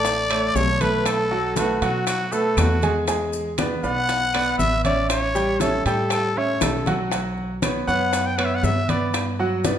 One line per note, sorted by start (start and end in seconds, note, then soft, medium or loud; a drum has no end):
0.00 0.51 A1 medium
0.00 0.21 A3 medium
0.00 0.21 A4 medium
0.00 0.58 D5 loud
0.00 0.21 C#6 medium
0.05 high bongo medium
0.05 high conga soft
0.05 high timbale medium
0.05 maracas medium
0.30 0.72 A3 medium
0.30 0.72 A4 medium
0.30 0.72 C#5 medium
0.30 high bongo soft
0.30 high conga soft
0.30 high timbale medium
0.30 claves medium
0.55 1.75 B1 medium
0.55 0.83 C#5 medium
0.55 high bongo soft
0.55 low bongo medium
0.55 high conga medium
0.55 low timbale medium
0.55 maracas medium
0.81 1.22 A3 medium
0.81 1.22 A4 medium
0.81 1.08 B4 medium
0.81 1.23 B4 medium
0.81 high bongo soft
0.81 high conga medium
0.81 high timbale medium
0.81 maracas soft
1.06 1.57 A4 medium
1.06 high bongo medium
1.06 high conga soft
1.06 high timbale medium
1.06 claves medium
1.06 maracas medium
1.31 1.52 F#3 medium
1.31 1.52 F#4 medium
1.31 1.52 F#5 medium
1.31 high conga soft
1.56 1.77 A3 medium
1.56 1.80 F#4 medium
1.56 1.77 A4 medium
1.56 1.77 B4 medium
1.56 high bongo medium
1.56 high conga medium
1.56 high timbale medium
1.56 maracas medium
1.82 2.53 B2 medium
1.82 2.23 F#3 medium
1.82 2.23 F#4 medium
1.82 2.06 F#4 medium
1.82 2.24 F#5 medium
1.82 high bongo soft
1.82 high conga soft
1.82 high timbale medium
1.82 maracas soft
2.07 2.34 F#4 medium
2.07 high bongo medium
2.07 high conga soft
2.07 high timbale medium
2.07 claves medium
2.07 maracas medium
2.32 2.73 A3 medium
2.32 2.74 A4 medium
2.32 2.60 A4 medium
2.32 2.74 B4 medium
2.32 high bongo soft
2.32 high conga soft
2.32 maracas medium
2.57 3.77 E2 medium
2.57 2.96 F#4 medium
2.57 high bongo soft
2.57 low bongo medium
2.57 high conga medium
2.57 high timbale medium
2.57 low timbale medium
2.57 claves medium
2.57 maracas medium
2.82 3.03 G#3 medium
2.82 3.04 G#4 medium
2.82 3.04 G#5 medium
2.82 high bongo soft
2.82 high conga medium
2.82 high timbale medium
2.82 maracas soft
3.08 3.49 G#3 medium
3.08 3.50 G#4 medium
3.08 3.50 G#5 medium
3.08 high bongo medium
3.08 high conga soft
3.08 high timbale medium
3.08 maracas medium
3.33 high conga soft
3.33 maracas medium
3.58 3.79 B3 medium
3.58 3.79 B4 medium
3.58 3.79 D5 medium
3.58 high bongo medium
3.58 high conga medium
3.58 high timbale medium
3.58 claves medium
3.58 maracas medium
3.83 4.55 B1 medium
3.83 4.25 B3 medium
3.83 4.25 B4 medium
3.83 4.25 D5 medium
3.83 4.55 F#5 loud
3.83 high bongo soft
3.83 high conga soft
3.83 maracas soft
4.09 high bongo medium
4.09 high conga soft
4.09 high timbale medium
4.09 maracas medium
4.34 4.76 B3 medium
4.34 4.76 B4 medium
4.34 4.76 D5 medium
4.34 high bongo soft
4.34 high conga soft
4.34 high timbale medium
4.34 claves medium
4.58 5.79 A1 medium
4.58 4.82 E5 loud
4.58 high bongo soft
4.58 low bongo medium
4.58 high conga medium
4.58 maracas medium
4.84 5.26 C#4 medium
4.84 5.26 C#5 medium
4.84 5.08 D5 medium
4.84 5.26 E5 medium
4.84 high bongo soft
4.84 high conga medium
4.84 high timbale medium
4.84 maracas soft
5.10 5.62 C#5 medium
5.10 high bongo medium
5.10 high conga soft
5.10 high timbale medium
5.10 claves medium
5.10 maracas medium
5.35 5.56 G3 medium
5.35 5.56 G4 medium
5.35 5.56 G5 medium
5.35 high conga soft
5.35 maracas medium
5.60 5.81 C#4 medium
5.60 5.86 A4 medium
5.60 5.81 C#5 medium
5.60 5.81 E5 medium
5.60 high bongo medium
5.60 high conga medium
5.60 high timbale medium
5.60 maracas medium
5.85 6.57 A2 medium
5.85 6.27 G3 medium
5.85 6.28 G4 medium
5.85 6.10 A4 medium
5.85 6.28 G5 medium
5.85 high bongo soft
5.85 high conga soft
5.85 high timbale medium
5.85 maracas soft
6.10 6.39 A4 medium
6.10 high bongo medium
6.10 high conga soft
6.10 high timbale medium
6.10 claves medium
6.10 maracas medium
6.36 6.78 C#4 medium
6.36 6.78 C#5 medium
6.36 6.64 C#5 medium
6.36 6.78 E5 medium
6.36 high bongo soft
6.36 high conga soft
6.61 7.81 B1 medium
6.61 7.00 A4 medium
6.61 high bongo medium
6.61 high conga medium
6.61 high timbale medium
6.61 low timbale medium
6.61 claves medium
6.61 maracas medium
6.86 7.08 F#3 medium
6.86 7.08 F#4 medium
6.86 7.08 F#5 medium
6.86 low bongo medium
6.86 high conga medium
6.86 high timbale medium
6.86 maracas soft
7.12 7.53 F#3 medium
7.12 7.54 F#4 medium
7.12 7.54 F#5 medium
7.12 high bongo medium
7.12 high conga soft
7.12 high timbale medium
7.12 maracas medium
7.38 high conga soft
7.62 7.83 B3 medium
7.62 7.83 B4 medium
7.62 7.84 C#5 medium
7.62 high bongo medium
7.62 high conga medium
7.62 high timbale medium
7.62 claves medium
7.62 maracas medium
7.87 8.60 F#2 medium
7.87 8.29 B3 medium
7.87 8.29 B4 medium
7.87 8.29 C#5 medium
7.87 8.28 F#5 medium
7.87 high bongo soft
7.87 high conga soft
7.87 maracas soft
8.13 high bongo medium
8.13 high conga soft
8.13 high timbale medium
8.13 maracas medium
8.27 8.38 G5 medium
8.37 8.80 B3 medium
8.37 8.80 B4 medium
8.37 8.80 C#5 medium
8.37 8.47 F#5 medium
8.37 high bongo soft
8.37 high conga soft
8.37 high timbale medium
8.37 claves medium
8.45 8.57 E5 medium
8.55 8.66 F#5 medium
8.63 9.79 G2 medium
8.63 8.91 E5 medium
8.63 high bongo soft
8.63 low bongo medium
8.63 high conga medium
8.63 low timbale medium
8.63 maracas medium
8.89 9.30 B3 medium
8.89 9.31 B4 medium
8.89 9.31 D5 medium
8.89 9.15 D5 medium
8.89 high bongo soft
8.89 high conga medium
8.89 high timbale medium
8.89 maracas soft
9.14 high bongo medium
9.14 high conga soft
9.14 high timbale medium
9.14 claves medium
9.14 maracas medium
9.39 9.60 F#3 medium
9.39 9.60 F#4 medium
9.39 9.61 F#5 medium
9.39 high conga soft
9.64 9.79 B3 medium
9.64 9.79 B4 medium
9.64 9.79 D5 medium
9.64 high bongo medium
9.64 high conga medium
9.64 high timbale medium
9.64 maracas medium